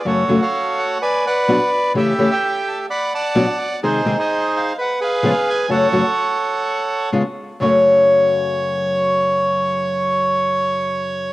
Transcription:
<<
  \new Staff \with { instrumentName = "Bandoneon" } { \time 4/4 \key fis \minor \tempo 4 = 128 << { cis''8. eis''8. fis''8 gis''8 fis''4 r8 | e''8. g''8. a''8 b''8 a''4 r8 | bis'8. dis''8. eis''8 fis''8 eis''4 gis''8 | fis''2. r4 |
cis''1~ | cis''1 | } \\ { <fis' a'>8. <a' cis''>4~ <a' cis''>16 <b' d''>8 <b' d''>4. | <g' a'>8. e''4~ e''16 <d'' fis''>8 <d'' fis''>4. | <dis' gis'>8. <gis' bis'>4~ <gis' bis'>16 b'8 <gis' b'>4. | <a' cis''>2. r4 |
r1 | r1 | } >> }
  \new Staff \with { instrumentName = "Nylon-string guitar" } { \time 4/4 \key fis \minor <fis, cis fis a cis' fis'>8 <fis, cis fis a cis' fis'>8 r2 <b, fis b d' fis'>8 r8 | <cis e a cis' g'>8 <cis e a cis' g'>8 r2 <b, fis b d' fis'>8 r8 | <bis, dis gis bis gis'>8 <bis, dis gis bis gis'>8 r2 <cis eis gis b gis'>8 r8 | <fis, cis fis a cis' fis'>8 <fis, cis fis a cis' fis'>8 r2 <cis gis b eis' gis'>8 r8 |
<fis, cis fis a cis' fis'>1~ | <fis, cis fis a cis' fis'>1 | }
>>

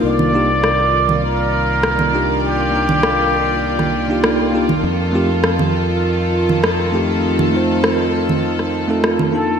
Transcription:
<<
  \new Staff \with { instrumentName = "Muted trumpet" } { \time 4/4 \key c \dorian \tempo 4 = 100 d''2 bes'2 | g'2.~ g'8 r8 | r1 | r2. r8 a'8 | }
  \new Staff \with { instrumentName = "Tine electric piano" } { \time 4/4 \key c \dorian <bes d' ees' f' bes'>8 <bes d' ees' f' g'>16 r2 r8. <bes d' ees' f' g'>8~ | <bes d' ees' f' g'>8 <bes d' ees' f' bes'>2~ <bes d' ees' f' bes'>16 <bes d' ees' f' g'>8. <bes d' ees' f' g'>16 r16 | r8 <a c' ees' f' g'>16 r2 r8. <a c' ees' f' g'>8~ | <a c' ees' f' g'>8 <a c' ees' f' c''>2~ <a c' ees' f' c''>16 <a c' ees' f' a'>8. <bes d' ees' f' a'>8 | }
  \new Staff \with { instrumentName = "String section" } { \time 4/4 \key c \dorian << { <ees bes d''>1~ | <ees bes d''>1 | <ees a'>1~ | <ees a'>1 | } \\ { f'1~ | f'1~ | f'1~ | f'1 | } >> }
  \new Staff \with { instrumentName = "Fingered electric bass" } { \clef bass \time 4/4 \key c \dorian c,1~ | c,1 | f,1~ | f,1 | }
  \new DrumStaff \with { instrumentName = "Drums" } \drummode { \time 4/4 r16 cgl8. ss8. cgl16 r4 ss16 cgl8. | r8. cgl16 ss4 r16 <cgl ss>8. ss8. cgl16 | r4 ss16 cgl8. r8. cgl16 ss4 | r16 cgl8. ss8. cgl16 r16 ss8. ss16 cgl8. | }
>>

